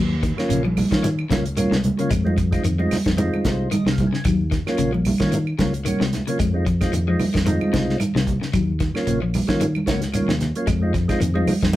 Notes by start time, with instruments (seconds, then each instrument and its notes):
Already playing: fingered electric bass D#2, clean electric guitar F#3
0.23 clean electric guitar D#3, kick, closed hi-hat, shekere
0.37 tonewheel organ F#3 A#3 C#4 F4, muted fingered electric bass stroke, snare, claves
0.49 fingered electric bass A#1, clean electric guitar C#3, closed hi-hat, low conga, shekere
0.65 clean electric guitar F3, high conga
0.77 open hi-hat, high conga, low conga, claves, shekere
0.91 clean electric guitar D#3, fingered electric bass D#3, tonewheel organ F#3 A#3 C#4 F4, kick, snare, closed hi-hat
1.03 clean electric guitar D#3, closed hi-hat, high conga, shekere
1.19 claves
1.30 fingered electric bass C#2, clean electric guitar C#3, tonewheel organ F#3 A#3 C#4 F4, kick, snare, closed hi-hat, high conga, low conga, shekere
1.46 closed hi-hat
1.56 clean electric guitar D#3, tonewheel organ F#3 A#3 C#4 F4, closed hi-hat, high conga, claves, shekere
1.71 fingered electric bass C#2, clean electric guitar C3, snare
1.84 closed hi-hat, high conga, low conga, shekere
1.98 clean electric guitar C#3, tonewheel organ F#3 A#3 C#4 F4, closed hi-hat
2.10 fingered electric bass F2, clean electric guitar G#3, kick, closed hi-hat, claves, shekere
2.24 tonewheel organ G#3 C4 D#4 F4, high conga
2.38 clean electric guitar F3, kick, closed hi-hat, shekere
2.51 tonewheel organ G#3 C4 D#4 F4, kick, closed hi-hat, claves
2.64 fingered electric bass F2, clean electric guitar D#3, closed hi-hat, shekere
2.78 tonewheel organ G#3 C4 D#4 F4, muted clean electric guitar stroke, high conga
2.91 snare, open hi-hat, high conga, low conga, claves, shekere
3.06 fingered electric bass F2, clean electric guitar D#3, kick, snare, closed hi-hat
3.17 clean electric guitar D#3, tonewheel organ G#3 C4 D#4 F4, closed hi-hat, high conga, shekere
3.34 high conga, claves
3.45 fingered electric bass C2, tonewheel organ C5, kick, snare, closed hi-hat, high conga, low conga, shekere
3.71 clean electric guitar D#3, tonewheel organ D#5, closed hi-hat, high conga, claves, shekere
3.86 fingered electric bass C2, clean electric guitar C3, tonewheel organ F5, snare
3.98 kick, closed hi-hat, high conga, low conga, shekere
4.07 tonewheel organ G#5
4.13 clean electric guitar C#3, snare
4.25 fingered electric bass D#2, clean electric guitar F#3, kick, closed hi-hat, claves, shekere
4.51 clean electric guitar D#3, kick, snare, closed hi-hat, shekere
4.66 tonewheel organ F#3 A#3 C#4 F4, snare, claves
4.78 fingered electric bass A#1, clean electric guitar C#3, closed hi-hat, shekere
4.93 clean electric guitar F3, high conga
5.05 open hi-hat, high conga, low conga, claves, shekere
5.20 clean electric guitar D#3, fingered electric bass D#3, tonewheel organ F#3 A#3 C#4 F4, kick, snare, closed hi-hat
5.32 clean electric guitar D#3, closed hi-hat, high conga, shekere
5.47 claves
5.58 fingered electric bass C#2, clean electric guitar C#3, tonewheel organ F#3 A#3 C#4 F4, kick, snare, closed hi-hat, high conga, shekere
5.74 closed hi-hat
5.85 clean electric guitar D#3, tonewheel organ F#3 A#3 C#4 F#4, closed hi-hat, high conga, claves, shekere
6.00 fingered electric bass C#2, clean electric guitar C3, snare
6.13 snare, closed hi-hat, low conga, shekere
6.27 clean electric guitar C#3, tonewheel organ F#3 A#3 C#4 F4, closed hi-hat
6.39 fingered electric bass F2, clean electric guitar G#3, kick, closed hi-hat, claves, shekere
6.54 tonewheel organ G#3 C4 D#4 F4
6.66 clean electric guitar F3, kick, closed hi-hat, shekere
6.81 tonewheel organ G#3 C4 D#4 F4, kick, snare, closed hi-hat, claves
6.93 fingered electric bass F2, clean electric guitar D#3, closed hi-hat, low conga, shekere
7.07 clean electric guitar F3, tonewheel organ G#3 C4 D#4 F4
7.19 open hi-hat, high conga, low conga, claves, shekere
7.34 fingered electric bass F2, clean electric guitar D#3, kick, snare, closed hi-hat
7.46 clean electric guitar D#3, tonewheel organ G#3 C4 D#4 F4, closed hi-hat, high conga, shekere
7.61 high conga, claves
7.73 fingered electric bass C2, clean electric guitar C#3, kick, snare, closed hi-hat, high conga, shekere
7.90 snare
8.00 clean electric guitar D#3, closed hi-hat, high conga, claves, shekere
8.15 fingered electric bass C2, clean electric guitar C3, snare
8.27 kick, closed hi-hat, low conga, shekere
8.41 clean electric guitar C#3, snare
8.53 fingered electric bass D#2, clean electric guitar F#3, kick, closed hi-hat, claves, shekere
8.80 clean electric guitar D#3, kick, snare, closed hi-hat, shekere
8.94 tonewheel organ F#3 A#3 C#4 F4, muted fingered electric bass stroke, snare, claves
9.07 fingered electric bass A#1, clean electric guitar C#3, closed hi-hat, low conga, shekere
9.22 clean electric guitar F3
9.34 open hi-hat, high conga, low conga, claves, shekere
9.47 fingered electric bass D#3, clean electric guitar D#3, tonewheel organ F#3 A#3 C#4 F4, kick, snare, closed hi-hat
9.61 clean electric guitar D#3, closed hi-hat, high conga, shekere
9.75 high conga, claves
9.86 fingered electric bass C#2, clean electric guitar C#3, tonewheel organ F#3 A#3 C#4 F#4, kick, snare, closed hi-hat, high conga, shekere
10.02 snare, closed hi-hat
10.13 clean electric guitar D#3, tonewheel organ F#3 A#3 C#4 F4, closed hi-hat, high conga, claves, shekere
10.28 fingered electric bass D#2, clean electric guitar C3, snare
10.40 snare, closed hi-hat, low conga, shekere
10.55 tonewheel organ F#3 A#3 C#4 F4, closed hi-hat
10.67 fingered electric bass F2, clean electric guitar G#3, kick, closed hi-hat, claves, shekere
10.82 tonewheel organ G#3 C4 D#4 F4
10.94 clean electric guitar F3, kick, closed hi-hat, shekere
11.08 tonewheel organ G#3 C4 D#4 F4, kick, snare, closed hi-hat, claves
11.20 fingered electric bass F2, clean electric guitar D#3, closed hi-hat, low conga, shekere
11.34 clean electric guitar F3, tonewheel organ G#3 C4 D#4 F4, high conga
11.47 open hi-hat, high conga, low conga, claves, shekere
11.63 fingered electric bass F2, clean electric guitar D#3, kick, snare, closed hi-hat
11.73 tonewheel organ G#3